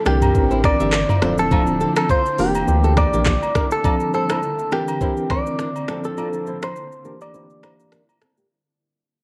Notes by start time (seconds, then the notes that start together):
Already playing: D3
0.05 C2 E3 A#3 C4 D4 E4 G4 A#4 D5, finger snap, cross-stick, shaker
0.22 mid tom, high agogo, shaker
0.35 A1 E3 C4 D4 A#4, kick, shaker
0.51 E4 C5, shaker
0.64 D5, finger snap, kick, cross-stick, high agogo, shaker
0.80 G1 E3 C4 D4 G4 A#4 E5, shaker
0.92 finger snap, cross-stick, clap, shaker
1.09 F4 D5, mid tom, high agogo, shaker
1.22 D1 F3 A3 C4 D4 F4 A4 C5, finger snap, cross-stick, shaker
1.38 A4, shaker
1.51 F3 A3 C4 D4 F4 A4, kick, high agogo, shaker
1.67 shaker
1.80 C4 A4, shaker
1.96 A4, finger snap, cross-stick, high agogo, shaker
2.09 F4 C5, kick, shaker
2.26 shaker
2.38 E1 D3 E3 G3 A#3 D4 E4 G4 A#4, open hi-hat, shaker
2.55 high agogo, shaker
2.67 D2 E3 A#3 D4 G4, shaker
2.84 C4 A4, shaker
2.97 D5, finger snap, kick, cross-stick, high agogo, shaker
3.13 A#1 E3 A#3 D4 G4, shaker
3.26 finger snap, kick, cross-stick, clap, shaker
3.43 high agogo, shaker
3.55 D4 A#4, finger snap, kick, cross-stick, shaker
3.71 A4, shaker
3.84 F3 C4 D4 F4 A4 D5, kick, high agogo, shaker
4.00 shaker
4.14 E4 A4 C5, shaker
4.29 E4 C5, finger snap, cross-stick, high agogo, shaker
4.43 shaker
4.59 shaker
4.72 D3 E3 A#3 C4 D4 E4 G4 A#4, finger snap, cross-stick, shaker
4.88 high agogo, shaker
5.01 E3 C4 D4 E4 A#4 C5, kick, shaker
5.17 shaker
5.30 E4 C5 D5, finger snap, kick, cross-stick, high agogo, shaker
5.46 E3 C4 D4 A#4, shaker
5.59 D4 A#4, finger snap, cross-stick, shaker
5.76 high agogo, shaker
5.88 F3 A3 C4 D4 F4 A4, finger snap, cross-stick, shaker
6.04 C4 A4, shaker
6.17 F3 C4 D4 F4 A4 D5, high agogo, shaker
6.33 shaker
6.47 E4 C5, shaker
6.62 E4 C5, finger snap, cross-stick, high agogo, shaker
6.76 shaker
6.92 shaker
7.05 D3 E3 G3 A#3 D4 E4 G4 A#4, shaker
7.21 D5, high agogo, shaker
7.34 E3 A#3 D4 E4 G4 C5, shaker
7.50 shaker
7.63 E4 C5, finger snap, cross-stick, high agogo, shaker
7.79 E3 A#3 D4 G4, shaker
7.92 D4 A#4, finger snap, cross-stick, shaker
8.09 high agogo, shaker
8.21 C4 A4, finger snap, cross-stick, shaker
8.37 A#3 G4, shaker